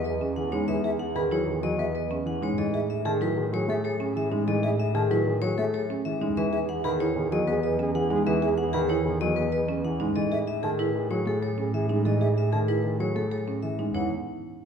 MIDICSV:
0, 0, Header, 1, 7, 480
1, 0, Start_track
1, 0, Key_signature, 4, "major"
1, 0, Tempo, 315789
1, 1041, Time_signature, 6, 2, 24, 8
1, 22268, End_track
2, 0, Start_track
2, 0, Title_t, "Flute"
2, 0, Program_c, 0, 73
2, 1285, Note_on_c, 0, 76, 66
2, 1376, Note_off_c, 0, 76, 0
2, 1762, Note_on_c, 0, 83, 55
2, 1853, Note_off_c, 0, 83, 0
2, 2720, Note_on_c, 0, 76, 67
2, 2811, Note_off_c, 0, 76, 0
2, 4161, Note_on_c, 0, 76, 61
2, 4252, Note_off_c, 0, 76, 0
2, 4641, Note_on_c, 0, 81, 54
2, 4732, Note_off_c, 0, 81, 0
2, 5604, Note_on_c, 0, 76, 74
2, 5696, Note_off_c, 0, 76, 0
2, 7044, Note_on_c, 0, 76, 73
2, 7135, Note_off_c, 0, 76, 0
2, 7531, Note_on_c, 0, 81, 60
2, 7622, Note_off_c, 0, 81, 0
2, 8487, Note_on_c, 0, 76, 73
2, 8578, Note_off_c, 0, 76, 0
2, 9921, Note_on_c, 0, 76, 74
2, 10012, Note_off_c, 0, 76, 0
2, 10404, Note_on_c, 0, 83, 66
2, 10495, Note_off_c, 0, 83, 0
2, 12809, Note_on_c, 0, 76, 66
2, 12900, Note_off_c, 0, 76, 0
2, 13281, Note_on_c, 0, 83, 59
2, 13372, Note_off_c, 0, 83, 0
2, 15684, Note_on_c, 0, 76, 70
2, 15775, Note_off_c, 0, 76, 0
2, 16162, Note_on_c, 0, 81, 56
2, 16254, Note_off_c, 0, 81, 0
2, 18560, Note_on_c, 0, 76, 61
2, 18651, Note_off_c, 0, 76, 0
2, 19036, Note_on_c, 0, 81, 54
2, 19127, Note_off_c, 0, 81, 0
2, 21193, Note_on_c, 0, 78, 61
2, 21420, Note_off_c, 0, 78, 0
2, 22268, End_track
3, 0, Start_track
3, 0, Title_t, "Vibraphone"
3, 0, Program_c, 1, 11
3, 67, Note_on_c, 1, 75, 49
3, 389, Note_off_c, 1, 75, 0
3, 552, Note_on_c, 1, 78, 55
3, 793, Note_on_c, 1, 73, 57
3, 870, Note_off_c, 1, 78, 0
3, 1032, Note_on_c, 1, 76, 65
3, 1111, Note_off_c, 1, 73, 0
3, 1350, Note_off_c, 1, 76, 0
3, 1512, Note_on_c, 1, 78, 54
3, 1759, Note_on_c, 1, 68, 66
3, 1830, Note_off_c, 1, 78, 0
3, 2008, Note_on_c, 1, 73, 53
3, 2073, Note_off_c, 1, 68, 0
3, 2316, Note_off_c, 1, 73, 0
3, 2482, Note_on_c, 1, 75, 75
3, 2723, Note_on_c, 1, 71, 52
3, 2794, Note_off_c, 1, 75, 0
3, 2968, Note_on_c, 1, 75, 49
3, 3034, Note_off_c, 1, 71, 0
3, 3276, Note_off_c, 1, 75, 0
3, 3446, Note_on_c, 1, 78, 53
3, 3698, Note_on_c, 1, 73, 56
3, 3755, Note_off_c, 1, 78, 0
3, 3923, Note_on_c, 1, 75, 64
3, 3999, Note_off_c, 1, 73, 0
3, 4234, Note_off_c, 1, 75, 0
3, 4408, Note_on_c, 1, 76, 62
3, 4645, Note_on_c, 1, 68, 72
3, 4716, Note_off_c, 1, 76, 0
3, 4891, Note_on_c, 1, 71, 57
3, 4955, Note_off_c, 1, 68, 0
3, 5197, Note_off_c, 1, 71, 0
3, 5377, Note_on_c, 1, 73, 72
3, 5621, Note_on_c, 1, 69, 59
3, 5679, Note_off_c, 1, 73, 0
3, 5850, Note_on_c, 1, 73, 54
3, 5920, Note_off_c, 1, 69, 0
3, 6157, Note_off_c, 1, 73, 0
3, 6337, Note_on_c, 1, 76, 55
3, 6639, Note_off_c, 1, 76, 0
3, 6806, Note_on_c, 1, 75, 72
3, 7115, Note_off_c, 1, 75, 0
3, 7289, Note_on_c, 1, 76, 63
3, 7522, Note_on_c, 1, 68, 79
3, 7596, Note_off_c, 1, 76, 0
3, 7766, Note_on_c, 1, 71, 65
3, 7834, Note_off_c, 1, 68, 0
3, 8075, Note_off_c, 1, 71, 0
3, 8232, Note_on_c, 1, 73, 76
3, 8479, Note_on_c, 1, 69, 60
3, 8550, Note_off_c, 1, 73, 0
3, 8723, Note_on_c, 1, 73, 54
3, 8793, Note_off_c, 1, 69, 0
3, 9034, Note_off_c, 1, 73, 0
3, 9198, Note_on_c, 1, 76, 64
3, 9512, Note_off_c, 1, 76, 0
3, 9687, Note_on_c, 1, 76, 77
3, 9996, Note_off_c, 1, 76, 0
3, 10167, Note_on_c, 1, 78, 62
3, 10399, Note_on_c, 1, 68, 73
3, 10475, Note_off_c, 1, 78, 0
3, 10646, Note_on_c, 1, 73, 63
3, 10713, Note_off_c, 1, 68, 0
3, 10955, Note_off_c, 1, 73, 0
3, 11131, Note_on_c, 1, 75, 80
3, 11363, Note_on_c, 1, 71, 60
3, 11437, Note_off_c, 1, 75, 0
3, 11602, Note_on_c, 1, 75, 52
3, 11674, Note_off_c, 1, 71, 0
3, 11914, Note_off_c, 1, 75, 0
3, 12086, Note_on_c, 1, 78, 64
3, 12395, Note_off_c, 1, 78, 0
3, 12564, Note_on_c, 1, 76, 71
3, 12874, Note_off_c, 1, 76, 0
3, 13036, Note_on_c, 1, 78, 64
3, 13271, Note_on_c, 1, 68, 79
3, 13352, Note_off_c, 1, 78, 0
3, 13516, Note_on_c, 1, 73, 65
3, 13590, Note_off_c, 1, 68, 0
3, 13832, Note_off_c, 1, 73, 0
3, 13999, Note_on_c, 1, 75, 76
3, 14232, Note_on_c, 1, 71, 62
3, 14313, Note_off_c, 1, 75, 0
3, 14473, Note_on_c, 1, 75, 58
3, 14550, Note_off_c, 1, 71, 0
3, 14791, Note_off_c, 1, 75, 0
3, 14965, Note_on_c, 1, 78, 56
3, 15275, Note_off_c, 1, 78, 0
3, 15437, Note_on_c, 1, 75, 74
3, 15752, Note_off_c, 1, 75, 0
3, 15922, Note_on_c, 1, 76, 62
3, 16156, Note_on_c, 1, 68, 65
3, 16234, Note_off_c, 1, 76, 0
3, 16410, Note_on_c, 1, 71, 54
3, 16472, Note_off_c, 1, 68, 0
3, 16717, Note_off_c, 1, 71, 0
3, 16882, Note_on_c, 1, 73, 67
3, 17135, Note_on_c, 1, 69, 54
3, 17194, Note_off_c, 1, 73, 0
3, 17366, Note_on_c, 1, 73, 50
3, 17438, Note_off_c, 1, 69, 0
3, 17675, Note_off_c, 1, 73, 0
3, 17847, Note_on_c, 1, 76, 54
3, 18156, Note_off_c, 1, 76, 0
3, 18334, Note_on_c, 1, 75, 60
3, 18638, Note_off_c, 1, 75, 0
3, 18813, Note_on_c, 1, 76, 51
3, 19039, Note_on_c, 1, 68, 61
3, 19118, Note_off_c, 1, 76, 0
3, 19280, Note_on_c, 1, 71, 52
3, 19353, Note_off_c, 1, 68, 0
3, 19593, Note_off_c, 1, 71, 0
3, 19765, Note_on_c, 1, 73, 63
3, 20002, Note_on_c, 1, 69, 51
3, 20075, Note_off_c, 1, 73, 0
3, 20236, Note_on_c, 1, 73, 45
3, 20314, Note_off_c, 1, 69, 0
3, 20552, Note_off_c, 1, 73, 0
3, 20710, Note_on_c, 1, 76, 47
3, 21030, Note_off_c, 1, 76, 0
3, 21196, Note_on_c, 1, 73, 58
3, 21422, Note_off_c, 1, 73, 0
3, 22268, End_track
4, 0, Start_track
4, 0, Title_t, "French horn"
4, 0, Program_c, 2, 60
4, 81, Note_on_c, 2, 68, 60
4, 250, Note_off_c, 2, 68, 0
4, 315, Note_on_c, 2, 68, 69
4, 485, Note_off_c, 2, 68, 0
4, 557, Note_on_c, 2, 68, 70
4, 727, Note_off_c, 2, 68, 0
4, 802, Note_on_c, 2, 68, 69
4, 970, Note_off_c, 2, 68, 0
4, 1046, Note_on_c, 2, 68, 70
4, 1213, Note_off_c, 2, 68, 0
4, 1283, Note_on_c, 2, 68, 64
4, 1451, Note_off_c, 2, 68, 0
4, 1520, Note_on_c, 2, 68, 58
4, 1689, Note_off_c, 2, 68, 0
4, 1760, Note_on_c, 2, 68, 58
4, 1929, Note_off_c, 2, 68, 0
4, 1998, Note_on_c, 2, 68, 60
4, 2167, Note_off_c, 2, 68, 0
4, 2241, Note_on_c, 2, 68, 57
4, 2409, Note_off_c, 2, 68, 0
4, 2475, Note_on_c, 2, 68, 52
4, 2646, Note_off_c, 2, 68, 0
4, 2716, Note_on_c, 2, 68, 45
4, 2886, Note_off_c, 2, 68, 0
4, 2958, Note_on_c, 2, 68, 38
4, 3127, Note_off_c, 2, 68, 0
4, 3202, Note_on_c, 2, 68, 40
4, 3370, Note_off_c, 2, 68, 0
4, 3447, Note_on_c, 2, 68, 31
4, 3613, Note_off_c, 2, 68, 0
4, 3928, Note_on_c, 2, 68, 34
4, 4094, Note_off_c, 2, 68, 0
4, 4167, Note_on_c, 2, 68, 34
4, 4333, Note_off_c, 2, 68, 0
4, 4408, Note_on_c, 2, 68, 37
4, 4574, Note_off_c, 2, 68, 0
4, 4647, Note_on_c, 2, 68, 42
4, 4813, Note_off_c, 2, 68, 0
4, 4884, Note_on_c, 2, 68, 52
4, 5051, Note_off_c, 2, 68, 0
4, 5124, Note_on_c, 2, 68, 62
4, 5291, Note_off_c, 2, 68, 0
4, 5368, Note_on_c, 2, 68, 62
4, 5534, Note_off_c, 2, 68, 0
4, 5606, Note_on_c, 2, 68, 68
4, 5773, Note_off_c, 2, 68, 0
4, 5843, Note_on_c, 2, 68, 62
4, 6010, Note_off_c, 2, 68, 0
4, 6080, Note_on_c, 2, 68, 66
4, 6248, Note_off_c, 2, 68, 0
4, 6321, Note_on_c, 2, 68, 72
4, 6489, Note_off_c, 2, 68, 0
4, 6565, Note_on_c, 2, 68, 63
4, 6732, Note_off_c, 2, 68, 0
4, 6800, Note_on_c, 2, 68, 73
4, 6969, Note_off_c, 2, 68, 0
4, 7036, Note_on_c, 2, 68, 68
4, 7206, Note_off_c, 2, 68, 0
4, 7275, Note_on_c, 2, 68, 61
4, 7445, Note_off_c, 2, 68, 0
4, 7523, Note_on_c, 2, 68, 61
4, 7691, Note_off_c, 2, 68, 0
4, 7764, Note_on_c, 2, 68, 67
4, 7931, Note_off_c, 2, 68, 0
4, 8007, Note_on_c, 2, 68, 61
4, 8173, Note_off_c, 2, 68, 0
4, 8250, Note_on_c, 2, 68, 55
4, 8415, Note_off_c, 2, 68, 0
4, 8491, Note_on_c, 2, 68, 54
4, 8656, Note_off_c, 2, 68, 0
4, 8736, Note_on_c, 2, 68, 41
4, 8899, Note_off_c, 2, 68, 0
4, 8975, Note_on_c, 2, 68, 43
4, 9138, Note_off_c, 2, 68, 0
4, 9217, Note_on_c, 2, 68, 33
4, 9380, Note_off_c, 2, 68, 0
4, 9686, Note_on_c, 2, 68, 35
4, 9852, Note_off_c, 2, 68, 0
4, 9925, Note_on_c, 2, 68, 39
4, 10092, Note_off_c, 2, 68, 0
4, 10163, Note_on_c, 2, 68, 42
4, 10331, Note_off_c, 2, 68, 0
4, 10400, Note_on_c, 2, 68, 54
4, 10569, Note_off_c, 2, 68, 0
4, 10648, Note_on_c, 2, 68, 54
4, 10814, Note_off_c, 2, 68, 0
4, 10886, Note_on_c, 2, 68, 62
4, 11052, Note_off_c, 2, 68, 0
4, 11124, Note_on_c, 2, 68, 62
4, 11291, Note_off_c, 2, 68, 0
4, 11376, Note_on_c, 2, 68, 76
4, 11539, Note_off_c, 2, 68, 0
4, 11610, Note_on_c, 2, 68, 64
4, 11775, Note_off_c, 2, 68, 0
4, 11843, Note_on_c, 2, 68, 75
4, 12011, Note_off_c, 2, 68, 0
4, 12079, Note_on_c, 2, 68, 76
4, 12248, Note_off_c, 2, 68, 0
4, 12316, Note_on_c, 2, 68, 76
4, 12486, Note_off_c, 2, 68, 0
4, 12557, Note_on_c, 2, 68, 73
4, 12727, Note_off_c, 2, 68, 0
4, 12799, Note_on_c, 2, 68, 70
4, 12968, Note_off_c, 2, 68, 0
4, 13037, Note_on_c, 2, 68, 72
4, 13207, Note_off_c, 2, 68, 0
4, 13282, Note_on_c, 2, 68, 61
4, 13450, Note_off_c, 2, 68, 0
4, 13519, Note_on_c, 2, 68, 69
4, 13688, Note_off_c, 2, 68, 0
4, 13761, Note_on_c, 2, 68, 60
4, 13930, Note_off_c, 2, 68, 0
4, 14000, Note_on_c, 2, 68, 56
4, 14169, Note_off_c, 2, 68, 0
4, 14239, Note_on_c, 2, 68, 51
4, 14408, Note_off_c, 2, 68, 0
4, 14483, Note_on_c, 2, 68, 42
4, 14651, Note_off_c, 2, 68, 0
4, 14729, Note_on_c, 2, 68, 37
4, 14894, Note_off_c, 2, 68, 0
4, 14971, Note_on_c, 2, 68, 32
4, 15136, Note_off_c, 2, 68, 0
4, 15449, Note_on_c, 2, 68, 34
4, 15614, Note_off_c, 2, 68, 0
4, 15688, Note_on_c, 2, 68, 37
4, 15854, Note_off_c, 2, 68, 0
4, 15921, Note_on_c, 2, 68, 43
4, 16089, Note_off_c, 2, 68, 0
4, 16159, Note_on_c, 2, 68, 46
4, 16328, Note_off_c, 2, 68, 0
4, 16403, Note_on_c, 2, 68, 55
4, 16570, Note_off_c, 2, 68, 0
4, 16642, Note_on_c, 2, 68, 57
4, 16810, Note_off_c, 2, 68, 0
4, 16885, Note_on_c, 2, 68, 61
4, 17052, Note_off_c, 2, 68, 0
4, 17125, Note_on_c, 2, 68, 65
4, 17292, Note_off_c, 2, 68, 0
4, 17362, Note_on_c, 2, 68, 59
4, 17530, Note_off_c, 2, 68, 0
4, 17606, Note_on_c, 2, 68, 60
4, 17772, Note_off_c, 2, 68, 0
4, 17848, Note_on_c, 2, 68, 67
4, 18014, Note_off_c, 2, 68, 0
4, 18082, Note_on_c, 2, 68, 65
4, 18250, Note_off_c, 2, 68, 0
4, 18316, Note_on_c, 2, 68, 63
4, 18486, Note_off_c, 2, 68, 0
4, 18557, Note_on_c, 2, 68, 59
4, 18726, Note_off_c, 2, 68, 0
4, 18793, Note_on_c, 2, 68, 58
4, 18964, Note_off_c, 2, 68, 0
4, 19038, Note_on_c, 2, 68, 55
4, 19207, Note_off_c, 2, 68, 0
4, 19272, Note_on_c, 2, 68, 52
4, 19444, Note_off_c, 2, 68, 0
4, 19510, Note_on_c, 2, 68, 51
4, 19682, Note_off_c, 2, 68, 0
4, 19756, Note_on_c, 2, 68, 48
4, 19926, Note_off_c, 2, 68, 0
4, 19990, Note_on_c, 2, 68, 47
4, 20162, Note_off_c, 2, 68, 0
4, 20241, Note_on_c, 2, 68, 35
4, 20410, Note_off_c, 2, 68, 0
4, 20479, Note_on_c, 2, 68, 31
4, 20648, Note_off_c, 2, 68, 0
4, 20718, Note_on_c, 2, 68, 29
4, 20887, Note_off_c, 2, 68, 0
4, 22268, End_track
5, 0, Start_track
5, 0, Title_t, "Marimba"
5, 0, Program_c, 3, 12
5, 83, Note_on_c, 3, 71, 56
5, 323, Note_on_c, 3, 61, 60
5, 394, Note_off_c, 3, 71, 0
5, 634, Note_off_c, 3, 61, 0
5, 798, Note_on_c, 3, 63, 57
5, 1040, Note_on_c, 3, 71, 50
5, 1112, Note_off_c, 3, 63, 0
5, 1281, Note_on_c, 3, 68, 61
5, 1353, Note_off_c, 3, 71, 0
5, 1593, Note_off_c, 3, 68, 0
5, 1764, Note_on_c, 3, 71, 59
5, 1999, Note_on_c, 3, 64, 62
5, 2074, Note_off_c, 3, 71, 0
5, 2313, Note_off_c, 3, 64, 0
5, 2962, Note_on_c, 3, 71, 57
5, 3204, Note_on_c, 3, 61, 58
5, 3274, Note_off_c, 3, 71, 0
5, 3515, Note_off_c, 3, 61, 0
5, 3688, Note_on_c, 3, 63, 57
5, 3924, Note_on_c, 3, 69, 50
5, 3996, Note_off_c, 3, 63, 0
5, 4163, Note_on_c, 3, 68, 60
5, 4234, Note_off_c, 3, 69, 0
5, 4474, Note_off_c, 3, 68, 0
5, 4639, Note_on_c, 3, 69, 56
5, 4881, Note_on_c, 3, 64, 65
5, 4953, Note_off_c, 3, 69, 0
5, 5193, Note_off_c, 3, 64, 0
5, 5841, Note_on_c, 3, 69, 55
5, 6082, Note_on_c, 3, 61, 67
5, 6153, Note_off_c, 3, 69, 0
5, 6394, Note_off_c, 3, 61, 0
5, 6560, Note_on_c, 3, 63, 60
5, 6806, Note_on_c, 3, 69, 57
5, 6873, Note_off_c, 3, 63, 0
5, 7041, Note_on_c, 3, 68, 65
5, 7115, Note_off_c, 3, 69, 0
5, 7353, Note_off_c, 3, 68, 0
5, 7525, Note_on_c, 3, 69, 53
5, 7770, Note_on_c, 3, 64, 68
5, 7835, Note_off_c, 3, 69, 0
5, 8077, Note_off_c, 3, 64, 0
5, 8728, Note_on_c, 3, 69, 62
5, 8971, Note_on_c, 3, 61, 68
5, 9036, Note_off_c, 3, 69, 0
5, 9277, Note_off_c, 3, 61, 0
5, 9447, Note_on_c, 3, 63, 59
5, 9686, Note_on_c, 3, 71, 56
5, 9756, Note_off_c, 3, 63, 0
5, 9922, Note_on_c, 3, 68, 68
5, 9995, Note_off_c, 3, 71, 0
5, 10234, Note_off_c, 3, 68, 0
5, 10411, Note_on_c, 3, 71, 61
5, 10646, Note_on_c, 3, 64, 75
5, 10717, Note_off_c, 3, 71, 0
5, 10955, Note_off_c, 3, 64, 0
5, 11606, Note_on_c, 3, 71, 64
5, 11844, Note_on_c, 3, 61, 69
5, 11915, Note_off_c, 3, 71, 0
5, 12154, Note_off_c, 3, 61, 0
5, 12320, Note_on_c, 3, 63, 60
5, 12563, Note_on_c, 3, 71, 54
5, 12633, Note_off_c, 3, 63, 0
5, 12804, Note_on_c, 3, 68, 68
5, 12874, Note_off_c, 3, 71, 0
5, 13114, Note_off_c, 3, 68, 0
5, 13283, Note_on_c, 3, 71, 62
5, 13525, Note_on_c, 3, 64, 70
5, 13594, Note_off_c, 3, 71, 0
5, 13835, Note_off_c, 3, 64, 0
5, 14477, Note_on_c, 3, 71, 64
5, 14722, Note_on_c, 3, 61, 67
5, 14792, Note_off_c, 3, 71, 0
5, 15034, Note_off_c, 3, 61, 0
5, 15199, Note_on_c, 3, 63, 66
5, 15443, Note_on_c, 3, 69, 59
5, 15513, Note_off_c, 3, 63, 0
5, 15682, Note_on_c, 3, 68, 65
5, 15754, Note_off_c, 3, 69, 0
5, 15994, Note_off_c, 3, 68, 0
5, 16161, Note_on_c, 3, 69, 56
5, 16403, Note_on_c, 3, 64, 70
5, 16473, Note_off_c, 3, 69, 0
5, 16714, Note_off_c, 3, 64, 0
5, 17367, Note_on_c, 3, 69, 56
5, 17601, Note_on_c, 3, 61, 56
5, 17675, Note_off_c, 3, 69, 0
5, 17913, Note_off_c, 3, 61, 0
5, 18080, Note_on_c, 3, 63, 60
5, 18322, Note_on_c, 3, 69, 50
5, 18393, Note_off_c, 3, 63, 0
5, 18561, Note_on_c, 3, 68, 58
5, 18634, Note_off_c, 3, 69, 0
5, 18874, Note_off_c, 3, 68, 0
5, 19042, Note_on_c, 3, 69, 49
5, 19279, Note_on_c, 3, 64, 61
5, 19354, Note_off_c, 3, 69, 0
5, 19593, Note_off_c, 3, 64, 0
5, 20239, Note_on_c, 3, 69, 56
5, 20484, Note_on_c, 3, 61, 54
5, 20553, Note_off_c, 3, 69, 0
5, 20794, Note_off_c, 3, 61, 0
5, 20961, Note_on_c, 3, 63, 55
5, 21200, Note_on_c, 3, 64, 60
5, 21273, Note_off_c, 3, 63, 0
5, 21424, Note_off_c, 3, 64, 0
5, 22268, End_track
6, 0, Start_track
6, 0, Title_t, "Grand piano"
6, 0, Program_c, 4, 0
6, 563, Note_on_c, 4, 52, 56
6, 804, Note_on_c, 4, 56, 61
6, 874, Note_off_c, 4, 52, 0
6, 1038, Note_on_c, 4, 52, 61
6, 1114, Note_off_c, 4, 56, 0
6, 1352, Note_off_c, 4, 52, 0
6, 1754, Note_on_c, 4, 51, 69
6, 1997, Note_on_c, 4, 54, 52
6, 2071, Note_off_c, 4, 51, 0
6, 2238, Note_on_c, 4, 51, 53
6, 2312, Note_off_c, 4, 54, 0
6, 2476, Note_on_c, 4, 54, 65
6, 2552, Note_off_c, 4, 51, 0
6, 2712, Note_on_c, 4, 59, 59
6, 2792, Note_off_c, 4, 54, 0
6, 3030, Note_off_c, 4, 59, 0
6, 3432, Note_on_c, 4, 52, 58
6, 3674, Note_on_c, 4, 56, 62
6, 3750, Note_off_c, 4, 52, 0
6, 3922, Note_on_c, 4, 52, 69
6, 3991, Note_off_c, 4, 56, 0
6, 4234, Note_off_c, 4, 52, 0
6, 4641, Note_on_c, 4, 51, 72
6, 4879, Note_on_c, 4, 54, 54
6, 4953, Note_off_c, 4, 51, 0
6, 5122, Note_on_c, 4, 51, 57
6, 5193, Note_off_c, 4, 54, 0
6, 5358, Note_on_c, 4, 54, 69
6, 5434, Note_off_c, 4, 51, 0
6, 5597, Note_on_c, 4, 57, 62
6, 5672, Note_off_c, 4, 54, 0
6, 5912, Note_off_c, 4, 57, 0
6, 6320, Note_on_c, 4, 52, 52
6, 6560, Note_on_c, 4, 56, 62
6, 6633, Note_off_c, 4, 52, 0
6, 6799, Note_on_c, 4, 52, 68
6, 6873, Note_off_c, 4, 56, 0
6, 7113, Note_off_c, 4, 52, 0
6, 7516, Note_on_c, 4, 51, 71
6, 7762, Note_on_c, 4, 54, 60
6, 7832, Note_off_c, 4, 51, 0
6, 8006, Note_on_c, 4, 51, 57
6, 8074, Note_off_c, 4, 54, 0
6, 8240, Note_on_c, 4, 54, 74
6, 8315, Note_off_c, 4, 51, 0
6, 8487, Note_on_c, 4, 57, 60
6, 8553, Note_off_c, 4, 54, 0
6, 8796, Note_off_c, 4, 57, 0
6, 9206, Note_on_c, 4, 52, 57
6, 9443, Note_on_c, 4, 56, 65
6, 9515, Note_off_c, 4, 52, 0
6, 9687, Note_on_c, 4, 52, 74
6, 9754, Note_off_c, 4, 56, 0
6, 9996, Note_off_c, 4, 52, 0
6, 10406, Note_on_c, 4, 51, 68
6, 10715, Note_off_c, 4, 51, 0
6, 10887, Note_on_c, 4, 51, 65
6, 11128, Note_on_c, 4, 54, 77
6, 11195, Note_off_c, 4, 51, 0
6, 11362, Note_on_c, 4, 59, 70
6, 11436, Note_off_c, 4, 54, 0
6, 11674, Note_off_c, 4, 59, 0
6, 12083, Note_on_c, 4, 52, 59
6, 12323, Note_on_c, 4, 56, 66
6, 12394, Note_off_c, 4, 52, 0
6, 12566, Note_on_c, 4, 52, 77
6, 12634, Note_off_c, 4, 56, 0
6, 12875, Note_off_c, 4, 52, 0
6, 13285, Note_on_c, 4, 51, 78
6, 13595, Note_off_c, 4, 51, 0
6, 13766, Note_on_c, 4, 51, 63
6, 14007, Note_on_c, 4, 54, 73
6, 14075, Note_off_c, 4, 51, 0
6, 14247, Note_on_c, 4, 59, 61
6, 14316, Note_off_c, 4, 54, 0
6, 14556, Note_off_c, 4, 59, 0
6, 14964, Note_on_c, 4, 52, 59
6, 15206, Note_on_c, 4, 56, 66
6, 15274, Note_off_c, 4, 52, 0
6, 15446, Note_on_c, 4, 52, 70
6, 15515, Note_off_c, 4, 56, 0
6, 15755, Note_off_c, 4, 52, 0
6, 16169, Note_on_c, 4, 51, 68
6, 16476, Note_off_c, 4, 51, 0
6, 16648, Note_on_c, 4, 51, 53
6, 16885, Note_on_c, 4, 54, 72
6, 16956, Note_off_c, 4, 51, 0
6, 17122, Note_on_c, 4, 57, 53
6, 17195, Note_off_c, 4, 54, 0
6, 17434, Note_off_c, 4, 57, 0
6, 17842, Note_on_c, 4, 52, 55
6, 18083, Note_on_c, 4, 56, 52
6, 18154, Note_off_c, 4, 52, 0
6, 18319, Note_on_c, 4, 52, 60
6, 18394, Note_off_c, 4, 56, 0
6, 18633, Note_off_c, 4, 52, 0
6, 19043, Note_on_c, 4, 51, 62
6, 19354, Note_off_c, 4, 51, 0
6, 19517, Note_on_c, 4, 51, 54
6, 19755, Note_on_c, 4, 54, 68
6, 19832, Note_off_c, 4, 51, 0
6, 19998, Note_on_c, 4, 57, 53
6, 20071, Note_off_c, 4, 54, 0
6, 20312, Note_off_c, 4, 57, 0
6, 20716, Note_on_c, 4, 52, 52
6, 20964, Note_on_c, 4, 56, 50
6, 21032, Note_off_c, 4, 52, 0
6, 21203, Note_on_c, 4, 52, 58
6, 21274, Note_off_c, 4, 56, 0
6, 21425, Note_off_c, 4, 52, 0
6, 22268, End_track
7, 0, Start_track
7, 0, Title_t, "Double bass section"
7, 0, Program_c, 5, 48
7, 0, Note_on_c, 5, 40, 56
7, 3766, Note_off_c, 5, 40, 0
7, 3918, Note_on_c, 5, 45, 58
7, 9523, Note_off_c, 5, 45, 0
7, 9687, Note_on_c, 5, 40, 67
7, 15287, Note_off_c, 5, 40, 0
7, 15443, Note_on_c, 5, 45, 64
7, 21045, Note_off_c, 5, 45, 0
7, 21197, Note_on_c, 5, 40, 52
7, 21423, Note_off_c, 5, 40, 0
7, 22268, End_track
0, 0, End_of_file